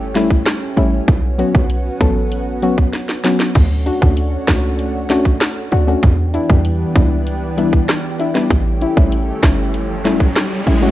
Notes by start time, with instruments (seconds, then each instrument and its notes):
Already playing: 808-style bass G1, analog synth pad A3 C#4 G4
0.15 synth pluck G3 A3 C#4 E4, snare, closed hi-hat
0.30 kick
0.46 cross-stick, snare, closed hi-hat
0.76 808-style bass A1, synth pluck G3 A3 C#4 E4, closed hi-hat
1.08 808-style bass B1, analog synth pad B3 F#4, kick, closed hi-hat
1.38 synth pluck F#3 B3 C#4 F#4, closed hi-hat
1.55 808-style bass B1, kick
1.70 closed hi-hat
2.00 808-style bass A1, synth pluck F#3 B3 C#4 A4, kick, closed hi-hat
2.32 closed hi-hat
2.62 synth pluck F#3 B3 C#4 F#4, closed hi-hat
2.78 kick
2.93 snare, closed hi-hat
3.09 snare
3.24 synth pluck F#3 B3 C#4 F#4, snare, closed hi-hat
3.40 snare
3.55 808-style bass D2, analog synth pad A3 C#4 D4 F#4, kick, closed hi-hat, crash
3.86 synth pluck D4 F#4, closed hi-hat
4.01 808-style bass D2, synth pluck A3 C#4 D4 F#4, kick
4.17 closed hi-hat
4.48 808-style bass C#2, synth pluck A3 C#4 D4 F#4, kick, cross-stick, snare, closed hi-hat
4.79 closed hi-hat
5.10 synth pluck A3 C#4 D4 F#4, snare, closed hi-hat
5.25 kick
5.41 cross-stick, snare, closed hi-hat
5.72 808-style bass D2, synth pluck D4 F#4, closed hi-hat
5.87 synth pluck A3 C#4 D4 F#4
6.03 808-style bass E2, analog synth pad E3 B3 D4 G4, kick, closed hi-hat
6.34 synth pluck D4 E4, closed hi-hat
6.49 808-style bass E2, synth pluck G3 B3 D4 G4, kick
6.65 closed hi-hat
6.96 808-style bass C#2, synth pluck G3 B3 D4 E4, kick, closed hi-hat
7.27 closed hi-hat
7.57 synth pluck G3 B3 D4 E4, closed hi-hat
7.73 kick
7.89 cross-stick, snare, closed hi-hat
8.19 synth pluck D4 E4, closed hi-hat
8.35 synth pluck G3 B3 D4 E4, snare
8.50 808-style bass A1, analog synth pad A3 C#4, kick, closed hi-hat, riser
8.81 synth pluck C#4 E4, closed hi-hat
8.96 808-style bass A1, synth pluck G3 A3 C#4 E4, kick
9.12 closed hi-hat
9.43 808-style bass G1, synth pluck G3 A3 C#4 E4, kick, cross-stick, snare, closed hi-hat
9.74 closed hi-hat
10.05 synth pluck G3 A3 C#4 E4, snare, closed hi-hat
10.20 kick
10.36 cross-stick, snare, closed hi-hat
10.66 808-style bass A1, synth pluck C#4 E4, closed hi-hat
10.82 synth pluck G3 A3 C#4 F#4